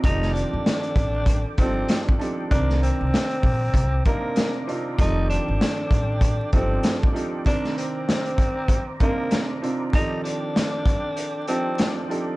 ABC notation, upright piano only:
X:1
M:4/4
L:1/8
Q:"Swing 16ths" 1/4=97
K:Fmix
V:1 name="Upright piano"
[E,F,CGAd]3 z2 [F,CDEGA]2 [F,CDEGA] | [C,E,CDB]3 z2 [C,CDEB]2 [C,CDEF] | [E,F,CGAd]3 z2 [F,CDEGA]2 [F,CDEGA] | [C,E,CDB]3 z2 [C,CDEB]2 [C,CDEF] |
[E,F,CGAd]3 z2 [F,CDEGA]2 [F,CDEGA] |]